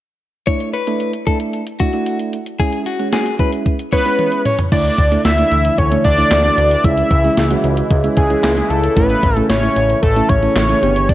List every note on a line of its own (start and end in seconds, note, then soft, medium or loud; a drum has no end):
0.47 0.73 A3 medium
0.47 0.73 D4 medium
0.47 0.73 E4 medium
0.47 0.69 C#5 medium
0.47 kick loud
0.47 closed hi-hat medium
0.60 closed hi-hat soft
0.74 1.11 B4 medium
0.74 closed hi-hat medium
0.87 1.13 A3 medium
0.87 1.13 D4 medium
0.87 1.13 E4 medium
0.87 closed hi-hat soft
1.00 closed hi-hat medium
1.13 closed hi-hat soft
1.27 1.61 A3 medium
1.27 1.61 D4 medium
1.27 1.61 E4 medium
1.27 1.38 A4 medium
1.27 kick medium
1.27 closed hi-hat medium
1.40 closed hi-hat soft
1.53 closed hi-hat medium
1.67 closed hi-hat medium
1.80 1.89 A3 medium
1.80 1.89 D4 medium
1.80 1.89 E4 medium
1.80 2.17 F#4 medium
1.80 kick medium
1.80 closed hi-hat medium
1.93 2.37 A3 medium
1.93 2.37 D4 medium
1.93 2.37 E4 medium
1.93 closed hi-hat soft
2.06 closed hi-hat medium
2.19 closed hi-hat soft
2.33 closed hi-hat medium
2.46 closed hi-hat medium
2.59 2.86 G#3 medium
2.59 2.86 C#4 medium
2.59 2.86 E4 medium
2.59 2.81 G#4 medium
2.59 kick loud
2.59 closed hi-hat medium
2.73 closed hi-hat soft
2.86 3.08 F#4 medium
2.86 closed hi-hat medium
2.99 3.25 G#3 medium
2.99 3.25 C#4 medium
2.99 3.25 F#4 medium
2.99 closed hi-hat soft
3.13 3.34 G#4 medium
3.13 snare loud
3.13 closed hi-hat medium
3.26 closed hi-hat soft
3.39 3.74 G#3 medium
3.39 3.74 C#4 medium
3.39 3.74 E4 medium
3.39 3.50 B4 medium
3.39 kick medium
3.39 closed hi-hat medium
3.53 closed hi-hat medium
3.66 kick medium
3.66 closed hi-hat medium
3.79 closed hi-hat medium
3.92 4.01 G#3 medium
3.92 4.01 C#4 medium
3.92 4.01 E4 medium
3.92 4.42 B4 medium
3.92 4.30 C#5 medium
3.92 kick medium
3.92 closed hi-hat medium
4.05 4.49 G#3 medium
4.05 4.49 C#4 medium
4.05 4.49 E4 medium
4.05 closed hi-hat soft
4.19 closed hi-hat medium
4.19 high tom medium
4.32 closed hi-hat soft
4.45 4.57 C#5 medium
4.45 closed hi-hat medium
4.45 mid tom medium
4.59 closed hi-hat medium
4.59 floor tom medium
4.72 4.91 D2 loud
4.72 6.82 D3 medium
4.72 10.79 E3 medium
4.72 4.98 A3 medium
4.72 6.82 A3 medium
4.72 4.98 D4 medium
4.72 4.98 E4 medium
4.72 10.79 E4 medium
4.72 5.21 D5 loud
4.72 kick loud
4.72 closed hi-hat medium
4.72 crash loud
4.85 closed hi-hat medium
4.98 5.17 D2 loud
4.98 kick medium
4.98 closed hi-hat medium
5.12 5.29 A3 medium
5.12 5.29 D4 medium
5.12 5.29 E4 medium
5.12 closed hi-hat soft
5.25 5.44 D2 loud
5.25 5.79 E5 loud
5.25 snare loud
5.25 closed hi-hat medium
5.38 5.73 A3 medium
5.38 5.73 D4 medium
5.38 5.73 E4 medium
5.38 closed hi-hat medium
5.52 5.70 D2 medium
5.52 closed hi-hat medium
5.65 closed hi-hat medium
5.78 5.97 D2 loud
5.78 6.04 C#5 loud
5.78 kick medium
5.78 closed hi-hat medium
5.92 6.09 A3 medium
5.92 6.09 D4 medium
5.92 6.09 E4 medium
5.92 closed hi-hat medium
6.04 6.23 D2 loud
6.04 6.86 D5 loud
6.04 kick medium
6.04 closed hi-hat medium
6.18 6.35 A3 medium
6.18 6.35 D4 medium
6.18 6.35 E4 medium
6.18 closed hi-hat medium
6.31 6.50 D2 loud
6.31 snare loud
6.31 clap loud
6.31 closed hi-hat medium
6.44 6.70 A3 medium
6.44 6.70 D4 medium
6.44 6.70 F#4 medium
6.44 closed hi-hat soft
6.58 6.76 D2 loud
6.58 closed hi-hat medium
6.71 closed hi-hat medium
6.84 7.03 C#2 loud
6.84 10.79 C#3 medium
6.84 7.10 G#3 medium
6.84 8.95 G#3 medium
6.84 7.10 C#4 medium
6.84 7.10 E4 medium
6.84 7.90 E5 loud
6.84 kick loud
6.84 closed hi-hat medium
6.98 closed hi-hat soft
7.11 7.29 C#2 loud
7.11 kick medium
7.11 closed hi-hat medium
7.24 7.41 G#3 medium
7.24 7.41 C#4 medium
7.24 7.41 E4 medium
7.24 closed hi-hat soft
7.37 7.56 C#2 loud
7.37 snare loud
7.37 closed hi-hat medium
7.51 7.85 G#3 medium
7.51 7.85 C#4 medium
7.51 7.85 F#4 loud
7.51 closed hi-hat medium
7.64 7.83 C#2 loud
7.64 closed hi-hat medium
7.77 closed hi-hat medium
7.91 8.09 C#2 loud
7.91 kick medium
7.91 closed hi-hat medium
8.04 8.21 G#3 medium
8.04 8.21 C#4 medium
8.04 8.21 E4 medium
8.04 closed hi-hat medium
8.17 8.36 C#2 loud
8.17 8.72 G#4 medium
8.17 kick medium
8.17 closed hi-hat medium
8.30 8.48 G#3 medium
8.30 8.48 C#4 medium
8.30 8.48 E4 medium
8.30 closed hi-hat medium
8.44 8.62 C#2 loud
8.44 snare loud
8.44 clap medium
8.44 closed hi-hat medium
8.57 8.83 G#3 medium
8.57 8.83 C#4 medium
8.57 8.83 E4 medium
8.57 closed hi-hat soft
8.70 8.89 C#2 loud
8.70 8.96 A4 medium
8.70 closed hi-hat medium
8.84 closed hi-hat medium
8.96 9.15 A1 loud
8.96 9.23 A3 medium
8.96 10.81 A3 medium
8.96 9.23 C#4 medium
8.96 9.23 E4 medium
8.96 9.46 B4 loud
8.96 kick loud
8.96 closed hi-hat medium
9.10 closed hi-hat soft
9.23 9.42 A1 loud
9.23 kick medium
9.23 closed hi-hat medium
9.37 9.54 A3 medium
9.37 9.54 C#4 medium
9.37 9.54 E4 medium
9.37 closed hi-hat soft
9.49 9.68 A1 loud
9.49 9.99 C#5 loud
9.49 snare loud
9.49 closed hi-hat medium
9.63 9.98 A3 medium
9.63 9.98 C#4 medium
9.63 9.98 E4 medium
9.63 closed hi-hat medium
9.76 9.95 A1 loud
9.76 closed hi-hat medium
9.90 closed hi-hat medium
10.02 10.22 A1 loud
10.02 10.30 A4 loud
10.02 kick medium
10.02 closed hi-hat medium
10.16 10.34 A3 medium
10.16 10.33 C#4 medium
10.16 10.34 E4 medium
10.16 closed hi-hat medium
10.29 10.48 A1 loud
10.29 11.10 C#5 loud
10.29 kick medium
10.29 closed hi-hat medium
10.43 10.60 A3 medium
10.43 10.60 C#4 medium
10.43 10.60 E4 medium
10.43 closed hi-hat medium
10.56 10.75 A1 loud
10.56 snare loud
10.56 clap medium
10.56 closed hi-hat medium
10.69 10.83 A3 medium
10.69 10.83 C#4 medium
10.69 10.83 E4 medium
10.69 closed hi-hat medium
10.82 11.14 G1 loud
10.82 11.14 D3 medium
10.82 11.14 G3 medium
10.82 11.14 B3 medium
10.82 11.14 D4 medium
10.82 11.14 G4 medium
10.82 closed hi-hat medium
10.96 closed hi-hat medium
11.09 11.14 D5 loud
11.09 kick loud
11.09 closed hi-hat medium